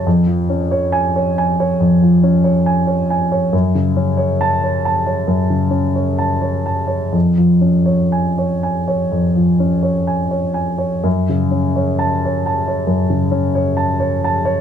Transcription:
\new Staff \with { instrumentName = "Grand piano" } { \time 4/4 \key fis \minor \tempo 4 = 67 << { r4 gis''8 r2 r8 | r4 a''8 r2 r8 | r4 gis''8 r2 r8 | r4 a''8 r2 r8 | } \\ { eis,16 eis16 cis'16 cis''8 cis''16 gis''16 cis''16 eis,16 eis16 cis'16 cis''16 gis''16 cis''16 gis''16 cis''16 | fis,16 cis16 cis'16 cis''8 cis''16 a''16 cis''16 fis,16 cis16 cis'16 cis''16 a''16 cis''16 a''16 cis''16 | eis,16 eis16 cis'16 cis''8 cis''16 gis''16 cis''16 eis,16 eis16 cis'16 cis''16 gis''16 cis''16 gis''16 cis''16 | fis,16 cis16 cis'16 cis''8 cis''16 a''16 cis''16 fis,16 cis16 cis'16 cis''16 a''16 cis''16 a''16 cis''16 | } >> }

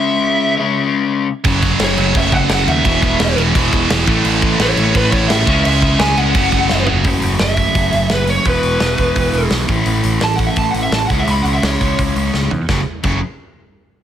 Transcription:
<<
  \new Staff \with { instrumentName = "Lead electric guitar" } { \time 4/4 \key fis \minor \tempo 4 = 171 e''4. r2 r8 | r4 cis''4 e''8 fis''8 fis''8 e''8~ | e''4. r2 r8 | r4 cis''4 b'8 cis''8 e''4 |
e''4 gis''8 fis''2 r8 | r4 e''2 b'8 cis''8 | b'2. r4 | r4 \tuplet 3/2 { a''8 fis''8 e''8 a''8 fis''8 e''8 a''8 fis''8 e''8 } |
\tuplet 3/2 { b''8 fis''8 e''8 } cis''4 r2 | r1 | }
  \new Staff \with { instrumentName = "Distorted electric guitar" } { \time 4/4 \key fis \minor r1 | <fis, cis fis a cis' fis'>4. <fis, cis fis a cis' fis'>4. <fis, cis fis a cis' fis'>4 | <e gis b e'>4. <e gis b e'>4. <e gis b e'>8 <a, e a cis' e'>8~ | <a, e a cis' e'>4 <a, e a cis' e'>4. <a, e a cis' e'>4 <cis gis cis' e'>8~ |
<cis gis cis' e'>4 <cis gis cis' e'>4 <fis, cis fis a cis' fis'>4. <fis, cis fis a cis' fis'>8 | <fis, cis fis a cis' fis'>2 <fis, cis fis a cis' fis'>2 | <e gis b e'>2 <e gis b e'>4. <a, e a cis' e'>8~ | <a, e a cis' e'>4. <a, e a cis' e'>2 <cis gis cis' e'>8~ |
<cis gis cis' e'>4. <cis gis cis' e'>2 r8 | <fis, cis fis a cis'>8 r8 <fis, cis fis a cis'>8 r2 r8 | }
  \new Staff \with { instrumentName = "Distorted electric guitar" } { \clef bass \time 4/4 \key fis \minor r1 | <fis, cis fis>4. <fis, cis fis>2~ <fis, cis fis>8 | <e, b, e>4. <e, b, e>2 <a, e a>8~ | <a, e a>4 <a, e a>2~ <a, e a>8 <cis gis cis'>8~ |
<cis gis cis'>4 <cis gis cis'>4 <fis, cis fis>4. <fis, cis fis>8 | r1 | r1 | r1 |
r1 | r1 | }
  \new Staff \with { instrumentName = "Overdriven electric guitar" } { \clef bass \time 4/4 \key fis \minor <cis gis cis'>4. <cis gis cis'>2 r8 | <fis, cis fis>2 <fis, cis fis>2 | <e, b, e>2 <e, b, e>4. <a, e a>8~ | <a, e a>4. <a, e a>2 <cis gis cis'>8~ |
<cis gis cis'>4. <cis gis cis'>8 <fis, cis fis>2 | <fis, cis fis>1 | <e, b, e>2.~ <e, b, e>8 <a, e a>8~ | <a, e a>2.~ <a, e a>8 <cis gis cis'>8~ |
<cis gis cis'>2.~ <cis gis cis'>8 r8 | <fis, cis fis>8 r8 <fis, cis fis>8 r2 r8 | }
  \new Staff \with { instrumentName = "Picked electric bass" } { \clef bass \time 4/4 \key fis \minor r1 | fis,,4 fis,,8 fis,,8 fis,,8 fis,,8 fis,,8 dis,8 | e,,4 e,,8 e,,8 e,,8 e,,8 e,,8 a,,8 | a,,4 a,,8 a,,8 a,,8 a,,8 a,,8 cis,8 |
cis,4 cis,8 cis,8 fis,,8 fis,,8 fis,,8 fis,,8 | fis,,8 fis,,8 fis,,4 fis,,8 fis,,8 fis,,4 | e,,8 e,,8 e,,8 e,,8 e,,8 e,,8 b,,8 a,,8 | a,,8 a,,8 a,,4 a,,8 a,,8 a,,8 cis,8 |
cis,8 cis,8 cis,8 cis,8 cis,8 cis,8 cis,8 e,8 | fis,,8 r8 fis,,8 r2 r8 | }
  \new DrumStaff \with { instrumentName = "Drums" } \drummode { \time 4/4 r4 r4 r4 r4 | <cymc bd>8 <cymc bd>8 <cymc sn>8 cymc8 <cymc bd>8 <cymc bd>8 <cymc sn>8 cymc8 | <cymc bd>8 <cymc bd>8 <cymc sn>8 cymc8 <cymc bd>8 <cymc bd>8 <cymc sn>8 <cymc bd>8 | cymc8 <cymc bd>8 <cymc sn>8 cymc8 <cymc bd>8 <cymc bd>8 <cymc sn>8 <cymc bd>8 |
cymc8 <cymc bd>8 <cymc sn>8 cymc8 <cymc bd>8 <cymc bd>8 sn8 tomfh8 | <hho bd>8 hho8 <hho sn>8 <hho bd>8 <hho bd>8 hho8 <hho sn>8 hho8 | <hho bd>8 hho8 <hho sn>8 <hho bd>8 <hho bd>8 hho8 <hho sn>8 <hho bd>8 | hho8 hho8 <hho sn>8 <hho bd>8 <hho bd>8 hho8 <hho sn>8 <hho bd>8 |
hho8 hho8 <hho sn>8 <hho bd>8 <hho bd>8 hho8 sn8 tomfh8 | <bd sn>4 <cymc bd>4 r4 r4 | }
>>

